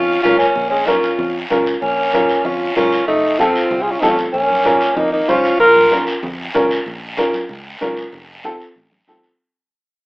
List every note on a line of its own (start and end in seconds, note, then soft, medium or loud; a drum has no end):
0.00 0.18 F2 loud
0.00 0.22 C#4 medium
0.00 0.22 F4 medium
0.23 0.49 C#2 medium
0.23 0.38 C#4 medium
0.23 0.46 C#4 medium
0.23 0.38 F4 loud
0.23 0.47 F4 medium
0.23 0.47 A#4 medium
0.23 high conga medium
0.23 short guiro medium
0.38 0.69 A#3 medium
0.38 0.68 C#4 medium
0.38 short guiro medium
0.56 1.06 A#1 medium
0.56 low conga medium
0.56 long guiro medium
0.70 0.88 G#3 medium
0.70 0.88 C#4 medium
0.87 1.39 C#4 medium
0.87 1.09 C#4 medium
0.87 1.39 F4 medium
0.87 1.09 F4 medium
0.87 1.10 A#4 medium
0.87 high conga medium
0.87 short guiro medium
1.03 short guiro medium
1.19 1.44 F2 loud
1.19 low conga medium
1.19 long guiro medium
1.50 1.76 C#2 medium
1.50 1.72 C#4 medium
1.50 1.73 F4 medium
1.50 1.73 A#4 medium
1.50 high conga medium
1.50 short guiro medium
1.66 short guiro medium
1.82 2.32 A#1 medium
1.82 2.46 A#3 medium
1.82 2.47 C#4 medium
1.82 long guiro medium
2.13 2.35 C#4 medium
2.13 2.35 F4 medium
2.13 2.36 A#4 medium
2.13 high conga medium
2.13 short guiro medium
2.29 short guiro medium
2.45 2.70 F2 loud
2.45 2.76 C#4 medium
2.45 2.76 F4 medium
2.45 low conga medium
2.45 long guiro medium
2.76 3.02 C#2 medium
2.76 2.98 C#4 medium
2.76 3.06 C#4 medium
2.76 2.98 F4 medium
2.76 3.06 F4 medium
2.76 2.98 A#4 medium
2.76 high conga medium
2.76 short guiro medium
2.92 short guiro medium
3.07 3.58 F1 medium
3.07 3.40 A3 medium
3.07 3.40 D#4 medium
3.07 long guiro medium
3.39 3.84 C4 medium
3.39 3.61 C4 medium
3.39 3.84 F4 loud
3.39 3.62 F4 medium
3.39 3.62 A4 medium
3.39 high conga medium
3.39 short guiro medium
3.55 short guiro medium
3.71 3.96 C2 loud
3.71 low conga medium
3.71 long guiro medium
3.82 3.93 F4 medium
3.82 3.93 G#4 medium
3.91 4.02 C#4 medium
3.91 4.01 F4 medium
4.00 4.27 A1 medium
4.00 4.11 C4 medium
4.00 4.24 C4 medium
4.00 4.10 D#4 medium
4.00 4.25 F4 medium
4.00 4.25 A4 medium
4.00 high conga medium
4.00 short guiro medium
4.08 4.18 C#4 medium
4.08 4.18 F4 medium
4.18 short guiro medium
4.33 4.84 A#1 medium
4.33 4.97 A#3 medium
4.33 4.98 C#4 loud
4.33 long guiro medium
4.50 high conga medium
4.65 4.87 C#4 medium
4.65 4.87 F4 medium
4.65 4.88 A#4 medium
4.65 high conga medium
4.65 short guiro medium
4.81 short guiro medium
4.96 5.22 F2 loud
4.96 5.12 A#3 medium
4.96 5.12 D#4 loud
4.96 low conga medium
4.96 long guiro medium
5.13 5.30 A#3 medium
5.13 5.30 D#4 medium
5.28 5.54 C#2 medium
5.28 5.50 C#4 medium
5.28 5.59 C#4 medium
5.28 5.59 F4 loud
5.28 5.51 F4 medium
5.28 5.51 C5 medium
5.28 high conga medium
5.28 short guiro medium
5.44 short guiro medium
5.59 6.10 A#1 loud
5.59 6.04 F4 medium
5.59 6.04 A#4 loud
5.59 low conga medium
5.59 long guiro medium
5.76 high conga medium
5.91 6.14 C#4 medium
5.91 6.14 F4 medium
5.91 6.14 A#4 medium
5.91 high conga medium
5.91 short guiro medium
6.07 short guiro medium
6.23 6.48 F2 loud
6.23 low conga medium
6.23 long guiro medium
6.54 6.80 C#2 medium
6.54 6.77 C#4 medium
6.54 6.77 F4 medium
6.54 6.77 A#4 loud
6.54 high conga medium
6.54 short guiro medium
6.71 short guiro medium
6.86 7.37 A#1 medium
6.86 high conga soft
6.86 long guiro medium
7.17 7.40 C#4 medium
7.17 7.40 F4 medium
7.17 7.40 A#4 medium
7.17 high conga medium
7.17 short guiro medium
7.33 high conga medium
7.33 short guiro medium
7.49 7.75 C#2 medium
7.49 high conga soft
7.49 long guiro medium
7.81 8.06 C#2 medium
7.81 8.03 C#4 medium
7.81 8.03 F4 medium
7.81 8.03 A#4 medium
7.81 high conga medium
7.81 short guiro medium
7.97 short guiro medium
8.12 8.63 F1 loud
8.12 high conga soft
8.12 long guiro medium
8.44 8.66 C4 medium
8.44 8.66 F4 medium
8.44 8.67 A4 medium
8.44 high conga medium
8.44 short guiro medium
8.60 short guiro medium
8.76 9.01 A1 medium
8.76 high conga soft
8.76 long guiro medium
8.92 high conga medium
9.07 9.33 A1 medium
9.07 9.30 C4 medium
9.07 9.30 F4 medium
9.07 9.30 A4 medium
9.07 high conga medium
9.07 short guiro medium
9.23 short guiro medium